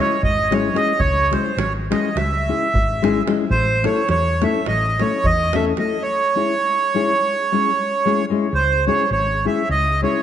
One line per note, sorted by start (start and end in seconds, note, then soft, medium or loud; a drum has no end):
0.00 0.15 G#3 medium
0.00 0.15 C#4 medium
0.00 0.15 E4 medium
0.00 0.15 G#4 medium
0.00 0.22 C#5 medium
0.23 0.69 G#1 medium
0.23 0.54 D#5 loud
0.23 davul low medium
0.51 0.68 G#3 medium
0.51 0.68 C#4 medium
0.51 0.68 E4 medium
0.51 0.69 G#4 medium
0.51 0.77 C#5 medium
0.51 davul high medium
0.73 0.91 G#3 medium
0.73 0.92 C#4 medium
0.73 0.92 E4 soft
0.73 0.92 G#4 medium
0.73 1.00 D#5 medium
0.73 davul high medium
0.99 1.35 C#2 medium
0.99 1.34 C#5 loud
0.99 davul low medium
1.31 1.49 G#3 medium
1.31 1.50 C#4 medium
1.31 1.50 E4 soft
1.31 1.50 G#4 medium
1.31 1.59 C5 medium
1.31 davul high medium
1.46 davul high soft
1.57 1.92 G#1 loud
1.57 1.73 C#5 medium
1.57 davul high medium
1.90 2.08 G#3 medium
1.90 2.09 C#4 medium
1.90 2.09 E4 medium
1.90 2.09 G#4 medium
1.90 2.17 D#5 medium
1.90 davul high medium
2.05 davul high soft
2.15 2.51 C#2 medium
2.15 3.23 E5 medium
2.15 davul high medium
2.34 davul high soft
2.48 2.66 G#3 medium
2.48 2.66 C#4 medium
2.48 2.67 E4 soft
2.48 2.67 G#4 medium
2.74 3.20 G#1 medium
2.74 davul low medium
3.02 3.19 G#3 medium
3.02 3.20 C#4 medium
3.02 3.20 E4 medium
3.02 3.20 G#4 loud
3.02 davul high medium
3.27 3.44 G#3 medium
3.27 3.44 C#4 medium
3.27 3.44 E4 medium
3.27 3.45 G#4 medium
3.27 davul high medium
3.50 3.85 A1 medium
3.50 3.85 C5 loud
3.50 davul low medium
3.68 davul high soft
3.83 4.01 A3 medium
3.83 4.01 C#4 medium
3.83 4.02 E4 soft
3.83 4.02 A4 medium
3.83 4.09 C#5 medium
3.83 davul high medium
3.96 davul high soft
4.09 4.44 E2 medium
4.09 4.44 C#5 loud
4.09 davul high medium
4.41 4.59 A3 medium
4.41 4.59 C#4 medium
4.41 4.60 E4 medium
4.41 4.60 A4 medium
4.41 4.66 E5 medium
4.41 davul high medium
4.54 davul high soft
4.66 5.02 A1 medium
4.66 5.02 D#5 medium
4.66 davul high medium
4.83 davul high soft
4.99 5.18 A3 medium
4.99 5.18 C#4 medium
4.99 5.18 E4 soft
4.99 5.19 A4 medium
4.99 5.26 C#5 medium
4.99 davul high soft
5.24 5.71 E2 medium
5.24 5.56 D#5 loud
5.24 davul low medium
5.53 5.71 A3 medium
5.53 5.71 C#4 medium
5.53 5.71 E4 soft
5.53 5.72 A4 medium
5.53 5.65 E5 loud
5.53 davul high medium
5.77 5.95 A3 medium
5.77 5.95 C#4 soft
5.77 5.96 E4 soft
5.77 5.96 A4 medium
5.77 6.03 D#5 medium
5.77 davul high soft
6.02 8.25 C#5 loud
6.35 6.53 G#3 medium
6.35 6.53 C#4 medium
6.35 6.53 E4 medium
6.35 6.53 G#4 medium
6.94 7.11 G#3 medium
6.94 7.11 C#4 medium
6.94 7.12 E4 medium
6.94 7.12 G#4 medium
7.52 7.69 G#3 medium
7.52 7.69 C#4 medium
7.52 7.70 E4 soft
7.52 7.70 G#4 medium
8.05 8.22 G#3 medium
8.05 8.22 C#4 medium
8.05 8.22 E4 medium
8.05 8.23 G#4 medium
8.30 8.46 G#3 medium
8.30 8.46 C#4 medium
8.30 8.47 E4 soft
8.30 8.47 G#4 medium
8.53 8.88 C#2 medium
8.53 8.85 C5 loud
8.86 9.04 G#3 medium
8.86 9.04 C#4 medium
8.86 9.04 E4 medium
8.86 9.05 G#4 medium
8.86 9.10 C#5 medium
9.11 9.46 G#1 loud
9.11 9.46 C#5 loud
9.45 9.62 G#3 medium
9.45 9.62 C#4 soft
9.45 9.62 E4 medium
9.45 9.62 G#4 medium
9.45 9.69 E5 medium
9.69 10.04 C#2 medium
9.69 10.01 D#5 loud
10.02 10.19 G#3 medium
10.02 10.20 C#4 soft
10.02 10.20 E4 medium
10.02 10.20 G#4 medium
10.02 10.23 C#5 medium